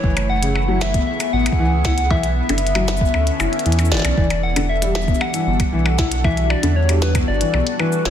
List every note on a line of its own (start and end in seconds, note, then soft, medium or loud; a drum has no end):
0.00 0.99 F#1 loud
0.00 2.11 E3 medium
0.00 0.10 E3 loud
0.00 2.11 A3 medium
0.00 5.12 E4 medium
0.00 0.31 C#5 loud
0.00 kick loud
0.17 closed hi-hat soft
0.17 percussion blips medium
0.30 0.83 F#5 loud
0.42 0.49 C#3 loud
0.42 closed hi-hat medium
0.56 percussion blips medium
0.66 0.79 F#3 loud
0.66 5.28 B3 medium
0.81 1.07 E5 loud
0.81 snare loud
0.81 cabasa medium
0.81 percussion blips medium
0.94 1.01 B3 medium
0.94 2.11 G#4 medium
0.94 kick loud
0.94 closed hi-hat medium
1.07 1.35 E5 loud
1.20 closed hi-hat medium
1.20 cabasa medium
1.20 percussion blips medium
1.33 1.49 A1 medium
1.33 1.44 B2 medium
1.33 1.84 F#5 loud
1.46 closed hi-hat medium
1.46 percussion blips medium
1.52 kick loud
1.59 2.12 C#2 medium
1.59 1.70 E3 loud
1.85 1.91 E4 loud
1.85 2.09 F#5 loud
1.85 kick loud
1.85 snare loud
1.85 cabasa medium
1.85 percussion blips medium
1.98 closed hi-hat medium
2.10 2.42 B1 medium
2.10 4.17 D3 medium
2.10 2.17 E3 loud
2.10 3.88 E5 loud
2.10 kick loud
2.10 percussion blips medium
2.23 closed hi-hat soft
2.49 3.06 F#1 medium
2.49 2.56 D3 loud
2.49 closed hi-hat medium
2.49 percussion blips medium
2.58 closed hi-hat medium
2.62 8.10 A4 medium
2.66 4.18 C#4 medium
2.66 closed hi-hat soft
2.75 2.86 F#3 loud
2.75 closed hi-hat medium
2.75 percussion blips medium
2.88 snare loud
2.88 cabasa medium
2.97 cabasa medium
3.01 3.08 B3 medium
3.01 kick loud
3.05 cabasa soft
3.14 3.30 D2 medium
3.14 percussion blips medium
3.27 closed hi-hat medium
3.40 3.48 F#1 medium
3.40 3.46 E4 medium
3.40 cabasa medium
3.40 percussion blips medium
3.53 closed hi-hat soft
3.59 closed hi-hat soft
3.66 3.93 E2 medium
3.66 3.77 E3 loud
3.66 closed hi-hat soft
3.72 closed hi-hat medium
3.79 3.89 E4 medium
3.79 closed hi-hat soft
3.79 cabasa medium
3.79 percussion blips medium
3.85 cabasa medium
3.91 4.00 F#1 loud
3.91 3.98 E3 loud
3.91 4.45 D5 loud
3.91 snare loud
3.94 snare medium
3.97 snare medium
3.97 cabasa soft
3.99 snare medium
4.02 4.13 B1 loud
4.02 snare soft
4.02 closed hi-hat medium
4.02 percussion blips medium
4.17 5.13 E1 loud
4.17 4.24 E3 loud
4.17 8.10 E3 medium
4.17 kick loud
4.30 closed hi-hat soft
4.30 percussion blips medium
4.43 4.69 F#5 loud
4.48 8.10 G3 medium
4.48 8.10 D4 medium
4.56 4.63 D3 loud
4.56 closed hi-hat medium
4.56 percussion blips medium
4.69 4.81 E5 medium
4.82 4.93 G3 loud
4.82 closed hi-hat medium
4.95 5.23 E5 loud
4.95 snare loud
4.95 cabasa soft
4.95 percussion blips medium
5.02 8.10 F#4 medium
5.02 cabasa soft
5.08 5.14 B3 medium
5.08 kick loud
5.08 cabasa soft
5.14 cabasa medium
5.21 6.26 F#5 loud
5.21 percussion blips medium
5.34 5.45 E3 medium
5.34 closed hi-hat medium
5.34 cabasa medium
5.47 5.63 G1 loud
5.47 5.58 B2 medium
5.60 kick loud
5.60 closed hi-hat medium
5.60 percussion blips medium
5.72 6.55 B1 medium
5.72 5.83 E3 loud
5.86 percussion blips medium
5.98 6.05 E4 loud
5.98 kick loud
5.98 snare loud
5.98 cabasa medium
6.12 closed hi-hat medium
6.24 6.31 E3 loud
6.24 6.52 E5 loud
6.24 kick loud
6.24 percussion blips medium
6.37 closed hi-hat soft
6.50 6.76 D5 medium
6.50 percussion blips medium
6.63 7.20 E2 medium
6.63 6.70 D3 loud
6.63 closed hi-hat medium
6.76 6.88 C#5 medium
6.89 7.00 G3 loud
6.89 closed hi-hat medium
6.89 percussion blips medium
7.02 7.14 B4 medium
7.02 snare loud
7.02 cabasa medium
7.15 7.21 B3 medium
7.15 kick loud
7.15 closed hi-hat medium
7.15 percussion blips medium
7.28 7.44 G1 medium
7.28 7.81 D5 loud
7.41 7.52 E3 medium
7.41 closed hi-hat medium
7.54 7.62 B1 medium
7.54 7.65 B2 medium
7.54 percussion blips medium
7.67 closed hi-hat medium
7.79 7.90 E3 loud
7.79 8.05 B4 medium
7.79 percussion blips medium
7.92 cabasa medium
8.05 8.10 E1 medium
8.05 8.10 E4 loud
8.05 8.10 C#5 loud
8.05 snare loud